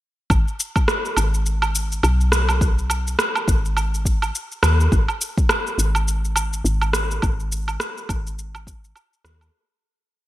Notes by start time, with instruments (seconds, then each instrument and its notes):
0.30 fm bass G#1, kick, low woodblock, shaker
0.48 shaker
0.60 shaker
0.76 kick, low woodblock, shaker
0.88 cross-stick, shaker
1.05 shaker
1.17 fm bass G#1, low woodblock, shaker
1.34 shaker
1.46 shaker
1.62 low woodblock, shaker
1.75 shaker
1.92 shaker
2.03 fm bass B1, low woodblock, shaker
2.21 shaker
2.32 cross-stick, shaker
2.49 low woodblock, shaker
2.61 kick, shaker
2.79 shaker
2.90 low woodblock, shaker
3.07 shaker
3.19 cross-stick, shaker
3.35 low woodblock, shaker
3.48 fm bass G#1, kick, shaker
3.65 shaker
3.77 low woodblock, shaker
3.94 shaker
4.05 kick, shaker
4.22 low woodblock, shaker
4.35 shaker
4.52 shaker
4.63 fm bass D#2, cross-stick, low woodblock, shaker
4.81 shaker
4.92 fm bass G#1, kick, shaker
5.08 low woodblock, shaker
5.21 shaker
5.38 kick, shaker
5.49 cross-stick, low woodblock, shaker
5.67 shaker
5.78 fm bass G#1, shaker
5.95 low woodblock, shaker
6.08 shaker
6.25 shaker
6.36 low woodblock, shaker
6.53 shaker
6.65 fm bass G#1, shaker
6.82 low woodblock, shaker
6.93 cross-stick, shaker
7.11 shaker
7.22 fm bass G#1, kick, low woodblock, shaker
7.40 shaker
7.52 shaker
7.68 low woodblock, shaker
7.80 cross-stick, shaker
7.98 shaker
8.09 fm bass G#1, kick, low woodblock, shaker
8.27 shaker
8.39 shaker
8.55 low woodblock, shaker
8.67 kick, shaker
8.84 shaker
8.96 low woodblock, shaker
9.13 shaker
9.25 fm bass D#2, cross-stick, shaker
9.41 low woodblock, shaker